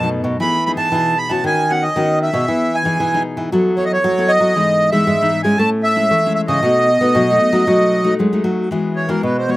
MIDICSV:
0, 0, Header, 1, 4, 480
1, 0, Start_track
1, 0, Key_signature, 4, "major"
1, 0, Tempo, 520382
1, 364, Time_signature, 4, 2, 24, 8
1, 8825, End_track
2, 0, Start_track
2, 0, Title_t, "Accordion"
2, 0, Program_c, 0, 21
2, 376, Note_on_c, 0, 83, 99
2, 593, Note_off_c, 0, 83, 0
2, 607, Note_on_c, 0, 83, 83
2, 661, Note_off_c, 0, 83, 0
2, 714, Note_on_c, 0, 81, 95
2, 1090, Note_off_c, 0, 81, 0
2, 1090, Note_on_c, 0, 83, 94
2, 1203, Note_on_c, 0, 81, 83
2, 1211, Note_off_c, 0, 83, 0
2, 1328, Note_off_c, 0, 81, 0
2, 1347, Note_on_c, 0, 80, 98
2, 1573, Note_on_c, 0, 78, 87
2, 1583, Note_off_c, 0, 80, 0
2, 1685, Note_on_c, 0, 75, 84
2, 1693, Note_off_c, 0, 78, 0
2, 2020, Note_off_c, 0, 75, 0
2, 2053, Note_on_c, 0, 76, 84
2, 2533, Note_on_c, 0, 80, 79
2, 2544, Note_off_c, 0, 76, 0
2, 2977, Note_off_c, 0, 80, 0
2, 3477, Note_on_c, 0, 73, 84
2, 3548, Note_off_c, 0, 73, 0
2, 3553, Note_on_c, 0, 75, 72
2, 3616, Note_off_c, 0, 75, 0
2, 3622, Note_on_c, 0, 73, 84
2, 3950, Note_on_c, 0, 75, 95
2, 3980, Note_off_c, 0, 73, 0
2, 4521, Note_off_c, 0, 75, 0
2, 4531, Note_on_c, 0, 76, 96
2, 4994, Note_off_c, 0, 76, 0
2, 5009, Note_on_c, 0, 80, 87
2, 5142, Note_on_c, 0, 81, 102
2, 5152, Note_off_c, 0, 80, 0
2, 5256, Note_off_c, 0, 81, 0
2, 5379, Note_on_c, 0, 76, 100
2, 5837, Note_off_c, 0, 76, 0
2, 5854, Note_on_c, 0, 76, 86
2, 5915, Note_off_c, 0, 76, 0
2, 5974, Note_on_c, 0, 75, 94
2, 7512, Note_off_c, 0, 75, 0
2, 8266, Note_on_c, 0, 73, 72
2, 8376, Note_on_c, 0, 70, 68
2, 8391, Note_off_c, 0, 73, 0
2, 8506, Note_off_c, 0, 70, 0
2, 8524, Note_on_c, 0, 71, 61
2, 8640, Note_off_c, 0, 71, 0
2, 8652, Note_on_c, 0, 72, 67
2, 8756, Note_on_c, 0, 73, 80
2, 8765, Note_off_c, 0, 72, 0
2, 8825, Note_off_c, 0, 73, 0
2, 8825, End_track
3, 0, Start_track
3, 0, Title_t, "Nylon-string guitar"
3, 0, Program_c, 1, 24
3, 0, Note_on_c, 1, 42, 54
3, 26, Note_on_c, 1, 54, 57
3, 32, Note_on_c, 1, 57, 51
3, 35, Note_on_c, 1, 63, 56
3, 338, Note_off_c, 1, 54, 0
3, 339, Note_off_c, 1, 57, 0
3, 342, Note_off_c, 1, 63, 0
3, 348, Note_off_c, 1, 42, 0
3, 387, Note_on_c, 1, 52, 52
3, 389, Note_on_c, 1, 59, 55
3, 391, Note_on_c, 1, 63, 53
3, 396, Note_on_c, 1, 68, 60
3, 517, Note_off_c, 1, 59, 0
3, 519, Note_off_c, 1, 63, 0
3, 521, Note_off_c, 1, 68, 0
3, 618, Note_on_c, 1, 59, 55
3, 622, Note_on_c, 1, 63, 54
3, 627, Note_on_c, 1, 68, 68
3, 813, Note_off_c, 1, 59, 0
3, 816, Note_off_c, 1, 63, 0
3, 816, Note_off_c, 1, 68, 0
3, 833, Note_off_c, 1, 52, 0
3, 863, Note_on_c, 1, 47, 55
3, 865, Note_on_c, 1, 59, 52
3, 868, Note_on_c, 1, 63, 56
3, 870, Note_on_c, 1, 68, 61
3, 1176, Note_off_c, 1, 59, 0
3, 1178, Note_off_c, 1, 63, 0
3, 1179, Note_off_c, 1, 68, 0
3, 1199, Note_on_c, 1, 59, 54
3, 1205, Note_on_c, 1, 61, 64
3, 1209, Note_on_c, 1, 66, 68
3, 1310, Note_off_c, 1, 47, 0
3, 1347, Note_on_c, 1, 51, 52
3, 1524, Note_off_c, 1, 59, 0
3, 1526, Note_off_c, 1, 61, 0
3, 1529, Note_off_c, 1, 66, 0
3, 1566, Note_on_c, 1, 59, 55
3, 1569, Note_on_c, 1, 61, 50
3, 1573, Note_on_c, 1, 66, 62
3, 1707, Note_off_c, 1, 59, 0
3, 1707, Note_off_c, 1, 61, 0
3, 1710, Note_off_c, 1, 66, 0
3, 1793, Note_off_c, 1, 51, 0
3, 1814, Note_on_c, 1, 51, 51
3, 1814, Note_on_c, 1, 59, 49
3, 1819, Note_on_c, 1, 66, 55
3, 1820, Note_on_c, 1, 61, 55
3, 2131, Note_off_c, 1, 59, 0
3, 2133, Note_off_c, 1, 61, 0
3, 2134, Note_off_c, 1, 66, 0
3, 2147, Note_on_c, 1, 59, 50
3, 2153, Note_on_c, 1, 68, 60
3, 2267, Note_off_c, 1, 51, 0
3, 2282, Note_on_c, 1, 52, 55
3, 2478, Note_off_c, 1, 59, 0
3, 2481, Note_off_c, 1, 68, 0
3, 2627, Note_on_c, 1, 59, 59
3, 2629, Note_on_c, 1, 63, 64
3, 2638, Note_on_c, 1, 68, 66
3, 2740, Note_off_c, 1, 52, 0
3, 2771, Note_on_c, 1, 47, 56
3, 2838, Note_off_c, 1, 59, 0
3, 2839, Note_off_c, 1, 63, 0
3, 2844, Note_off_c, 1, 68, 0
3, 2896, Note_on_c, 1, 59, 63
3, 2902, Note_on_c, 1, 63, 67
3, 2902, Note_on_c, 1, 68, 65
3, 3214, Note_off_c, 1, 59, 0
3, 3214, Note_off_c, 1, 63, 0
3, 3216, Note_off_c, 1, 68, 0
3, 3225, Note_off_c, 1, 47, 0
3, 3253, Note_on_c, 1, 54, 53
3, 3257, Note_on_c, 1, 64, 52
3, 3258, Note_on_c, 1, 59, 55
3, 3260, Note_on_c, 1, 69, 54
3, 3452, Note_off_c, 1, 59, 0
3, 3453, Note_off_c, 1, 64, 0
3, 3455, Note_off_c, 1, 69, 0
3, 3475, Note_on_c, 1, 59, 51
3, 3481, Note_on_c, 1, 64, 55
3, 3486, Note_on_c, 1, 69, 57
3, 3706, Note_off_c, 1, 54, 0
3, 3738, Note_on_c, 1, 54, 54
3, 3802, Note_off_c, 1, 59, 0
3, 3806, Note_off_c, 1, 64, 0
3, 3807, Note_off_c, 1, 69, 0
3, 3854, Note_on_c, 1, 59, 57
3, 3857, Note_on_c, 1, 64, 56
3, 3862, Note_on_c, 1, 69, 66
3, 4171, Note_off_c, 1, 64, 0
3, 4172, Note_off_c, 1, 59, 0
3, 4176, Note_off_c, 1, 69, 0
3, 4188, Note_off_c, 1, 54, 0
3, 4202, Note_on_c, 1, 52, 60
3, 4207, Note_on_c, 1, 44, 57
3, 4208, Note_on_c, 1, 59, 57
3, 4213, Note_on_c, 1, 63, 58
3, 4525, Note_off_c, 1, 52, 0
3, 4528, Note_off_c, 1, 59, 0
3, 4531, Note_off_c, 1, 63, 0
3, 4543, Note_on_c, 1, 52, 61
3, 4547, Note_on_c, 1, 59, 59
3, 4550, Note_on_c, 1, 63, 76
3, 4663, Note_off_c, 1, 44, 0
3, 4676, Note_on_c, 1, 44, 55
3, 4757, Note_off_c, 1, 52, 0
3, 4757, Note_off_c, 1, 59, 0
3, 4759, Note_off_c, 1, 63, 0
3, 4808, Note_on_c, 1, 52, 62
3, 4812, Note_on_c, 1, 59, 60
3, 4819, Note_on_c, 1, 63, 69
3, 5009, Note_off_c, 1, 52, 0
3, 5010, Note_off_c, 1, 59, 0
3, 5014, Note_off_c, 1, 63, 0
3, 5020, Note_on_c, 1, 61, 60
3, 5025, Note_on_c, 1, 64, 66
3, 5137, Note_off_c, 1, 44, 0
3, 5160, Note_on_c, 1, 45, 53
3, 5475, Note_off_c, 1, 61, 0
3, 5477, Note_off_c, 1, 64, 0
3, 5495, Note_on_c, 1, 56, 58
3, 5499, Note_on_c, 1, 61, 56
3, 5503, Note_on_c, 1, 64, 64
3, 5619, Note_off_c, 1, 45, 0
3, 5633, Note_on_c, 1, 52, 54
3, 5712, Note_off_c, 1, 56, 0
3, 5714, Note_off_c, 1, 61, 0
3, 5715, Note_off_c, 1, 64, 0
3, 5773, Note_on_c, 1, 56, 56
3, 5778, Note_on_c, 1, 61, 52
3, 5782, Note_on_c, 1, 64, 66
3, 6091, Note_off_c, 1, 56, 0
3, 6093, Note_off_c, 1, 61, 0
3, 6095, Note_off_c, 1, 52, 0
3, 6095, Note_off_c, 1, 64, 0
3, 6125, Note_on_c, 1, 47, 54
3, 6127, Note_on_c, 1, 57, 48
3, 6130, Note_on_c, 1, 63, 52
3, 6132, Note_on_c, 1, 66, 61
3, 6351, Note_off_c, 1, 57, 0
3, 6353, Note_off_c, 1, 63, 0
3, 6354, Note_off_c, 1, 66, 0
3, 6463, Note_on_c, 1, 57, 59
3, 6471, Note_on_c, 1, 63, 57
3, 6478, Note_on_c, 1, 66, 69
3, 6581, Note_off_c, 1, 47, 0
3, 6605, Note_on_c, 1, 54, 52
3, 6676, Note_off_c, 1, 57, 0
3, 6680, Note_off_c, 1, 63, 0
3, 6682, Note_off_c, 1, 66, 0
3, 6735, Note_on_c, 1, 57, 59
3, 6742, Note_on_c, 1, 63, 63
3, 6743, Note_on_c, 1, 66, 63
3, 6932, Note_off_c, 1, 57, 0
3, 6933, Note_off_c, 1, 63, 0
3, 6936, Note_off_c, 1, 66, 0
3, 6942, Note_on_c, 1, 57, 64
3, 6945, Note_on_c, 1, 63, 64
3, 6951, Note_on_c, 1, 66, 66
3, 7035, Note_off_c, 1, 57, 0
3, 7035, Note_off_c, 1, 63, 0
3, 7040, Note_off_c, 1, 66, 0
3, 7061, Note_off_c, 1, 54, 0
3, 7077, Note_on_c, 1, 57, 49
3, 7078, Note_on_c, 1, 47, 50
3, 7080, Note_on_c, 1, 63, 46
3, 7085, Note_on_c, 1, 66, 55
3, 7402, Note_off_c, 1, 57, 0
3, 7404, Note_off_c, 1, 63, 0
3, 7406, Note_off_c, 1, 66, 0
3, 7418, Note_on_c, 1, 57, 61
3, 7422, Note_on_c, 1, 63, 62
3, 7424, Note_on_c, 1, 66, 61
3, 7537, Note_off_c, 1, 47, 0
3, 7554, Note_on_c, 1, 54, 53
3, 7633, Note_off_c, 1, 57, 0
3, 7635, Note_off_c, 1, 63, 0
3, 7636, Note_off_c, 1, 66, 0
3, 7680, Note_on_c, 1, 57, 53
3, 7682, Note_on_c, 1, 63, 58
3, 7688, Note_on_c, 1, 66, 57
3, 8004, Note_off_c, 1, 57, 0
3, 8004, Note_off_c, 1, 63, 0
3, 8008, Note_off_c, 1, 66, 0
3, 8015, Note_off_c, 1, 54, 0
3, 8033, Note_on_c, 1, 52, 54
3, 8033, Note_on_c, 1, 56, 52
3, 8037, Note_on_c, 1, 59, 51
3, 8040, Note_on_c, 1, 66, 54
3, 8360, Note_off_c, 1, 56, 0
3, 8361, Note_off_c, 1, 59, 0
3, 8364, Note_off_c, 1, 66, 0
3, 8381, Note_on_c, 1, 56, 55
3, 8385, Note_on_c, 1, 59, 56
3, 8390, Note_on_c, 1, 66, 61
3, 8495, Note_off_c, 1, 52, 0
3, 8520, Note_on_c, 1, 47, 51
3, 8714, Note_off_c, 1, 56, 0
3, 8716, Note_off_c, 1, 59, 0
3, 8719, Note_off_c, 1, 66, 0
3, 8747, Note_on_c, 1, 56, 51
3, 8753, Note_on_c, 1, 59, 51
3, 8757, Note_on_c, 1, 66, 58
3, 8825, Note_off_c, 1, 47, 0
3, 8825, Note_off_c, 1, 56, 0
3, 8825, Note_off_c, 1, 59, 0
3, 8825, Note_off_c, 1, 66, 0
3, 8825, End_track
4, 0, Start_track
4, 0, Title_t, "Nylon-string guitar"
4, 0, Program_c, 2, 24
4, 0, Note_on_c, 2, 47, 90
4, 185, Note_off_c, 2, 47, 0
4, 220, Note_on_c, 2, 47, 78
4, 332, Note_off_c, 2, 47, 0
4, 368, Note_on_c, 2, 52, 81
4, 673, Note_off_c, 2, 52, 0
4, 710, Note_on_c, 2, 52, 80
4, 819, Note_off_c, 2, 52, 0
4, 846, Note_on_c, 2, 52, 90
4, 1050, Note_off_c, 2, 52, 0
4, 1193, Note_on_c, 2, 52, 77
4, 1300, Note_off_c, 2, 52, 0
4, 1328, Note_on_c, 2, 51, 81
4, 1735, Note_off_c, 2, 51, 0
4, 1807, Note_on_c, 2, 51, 90
4, 2112, Note_off_c, 2, 51, 0
4, 2153, Note_on_c, 2, 47, 87
4, 2261, Note_off_c, 2, 47, 0
4, 2291, Note_on_c, 2, 52, 82
4, 2595, Note_off_c, 2, 52, 0
4, 2630, Note_on_c, 2, 52, 77
4, 2739, Note_off_c, 2, 52, 0
4, 2767, Note_on_c, 2, 52, 92
4, 2970, Note_off_c, 2, 52, 0
4, 3109, Note_on_c, 2, 52, 76
4, 3218, Note_off_c, 2, 52, 0
4, 3250, Note_on_c, 2, 54, 79
4, 3656, Note_off_c, 2, 54, 0
4, 3727, Note_on_c, 2, 54, 95
4, 4033, Note_off_c, 2, 54, 0
4, 4062, Note_on_c, 2, 54, 92
4, 4174, Note_off_c, 2, 54, 0
4, 4205, Note_on_c, 2, 56, 82
4, 4512, Note_off_c, 2, 56, 0
4, 4542, Note_on_c, 2, 56, 78
4, 4654, Note_off_c, 2, 56, 0
4, 4678, Note_on_c, 2, 56, 96
4, 4885, Note_off_c, 2, 56, 0
4, 5024, Note_on_c, 2, 56, 78
4, 5135, Note_off_c, 2, 56, 0
4, 5159, Note_on_c, 2, 57, 87
4, 5570, Note_off_c, 2, 57, 0
4, 5634, Note_on_c, 2, 57, 89
4, 5945, Note_off_c, 2, 57, 0
4, 5980, Note_on_c, 2, 49, 91
4, 6093, Note_off_c, 2, 49, 0
4, 6112, Note_on_c, 2, 47, 82
4, 6424, Note_off_c, 2, 47, 0
4, 6465, Note_on_c, 2, 59, 77
4, 6576, Note_off_c, 2, 59, 0
4, 6593, Note_on_c, 2, 47, 93
4, 6802, Note_off_c, 2, 47, 0
4, 6941, Note_on_c, 2, 54, 77
4, 7053, Note_off_c, 2, 54, 0
4, 7077, Note_on_c, 2, 54, 86
4, 7488, Note_off_c, 2, 54, 0
4, 7562, Note_on_c, 2, 56, 77
4, 7779, Note_off_c, 2, 56, 0
4, 7786, Note_on_c, 2, 54, 76
4, 8010, Note_off_c, 2, 54, 0
4, 8042, Note_on_c, 2, 52, 78
4, 8349, Note_off_c, 2, 52, 0
4, 8382, Note_on_c, 2, 52, 81
4, 8493, Note_off_c, 2, 52, 0
4, 8516, Note_on_c, 2, 47, 82
4, 8825, Note_off_c, 2, 47, 0
4, 8825, End_track
0, 0, End_of_file